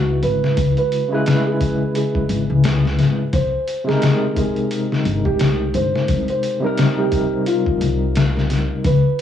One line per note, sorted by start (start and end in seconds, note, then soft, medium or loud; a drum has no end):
0.00 0.20 C#2 medium
0.00 1.05 C#3 medium
0.00 1.06 G#3 medium
0.00 1.07 E4 medium
0.00 0.19 F#4 medium
0.00 1.08 B4 medium
0.23 0.40 G#1 medium
0.23 0.71 B4 medium
0.23 open hi-hat medium
0.44 snare soft
0.57 0.75 C#2 medium
0.57 kick loud
0.57 open hi-hat medium
0.77 1.08 B4 medium
0.77 closed hi-hat soft
0.92 open hi-hat medium
1.08 3.29 C#3 medium
1.08 3.31 G#3 medium
1.12 3.32 E4 medium
1.12 1.42 G#4 medium
1.12 3.33 B4 loud
1.26 snare loud
1.26 open hi-hat medium
1.47 1.91 G#4 medium
1.61 kick medium
1.61 open hi-hat medium
1.95 3.22 G#4 medium
1.95 open hi-hat medium
2.15 kick medium
2.29 2.47 G#1 medium
2.29 open hi-hat medium
2.50 2.96 C#2 loud
2.64 snare loud
2.64 open hi-hat medium
2.85 snare soft
2.99 3.16 G#1 medium
2.99 snare soft
2.99 open hi-hat medium
3.33 3.51 C2 medium
3.33 3.82 C5 medium
3.33 kick loud
3.33 open hi-hat medium
3.68 open hi-hat medium
3.84 6.57 C3 medium
3.84 6.58 G#3 medium
3.84 4.32 G#4 medium
3.89 6.59 D#4 medium
3.89 6.60 A#4 medium
3.89 snare medium
4.02 snare loud
4.02 open hi-hat medium
4.36 4.68 G#4 medium
4.36 kick medium
4.36 open hi-hat medium
4.56 closed hi-hat soft
4.71 open hi-hat medium
4.92 snare soft
5.05 5.23 G1 medium
5.05 open hi-hat medium
5.25 5.72 C2 medium
5.25 5.70 G4 medium
5.25 kick medium
5.39 snare loud
5.39 open hi-hat medium
5.74 5.92 G1 medium
5.74 6.23 C5 medium
5.74 open hi-hat medium
5.96 snare soft
6.08 6.26 C2 medium
6.08 kick loud
6.08 open hi-hat medium
6.28 6.60 C5 medium
6.28 closed hi-hat soft
6.43 open hi-hat medium
6.60 8.81 C3 medium
6.60 8.82 G3 medium
6.60 6.94 A#4 medium
6.64 8.83 D#4 medium
6.64 8.84 A#4 loud
6.77 snare loud
6.77 open hi-hat medium
6.98 7.43 G4 medium
7.12 kick medium
7.12 open hi-hat medium
7.46 8.73 F4 medium
7.46 open hi-hat medium
7.66 kick medium
7.81 8.66 C2 medium
7.81 open hi-hat medium
8.15 snare loud
8.15 open hi-hat medium
8.37 snare soft
8.50 snare soft
8.50 open hi-hat medium
8.84 9.02 C#2 medium
8.84 9.21 B4 medium
8.84 kick loud
8.84 open hi-hat medium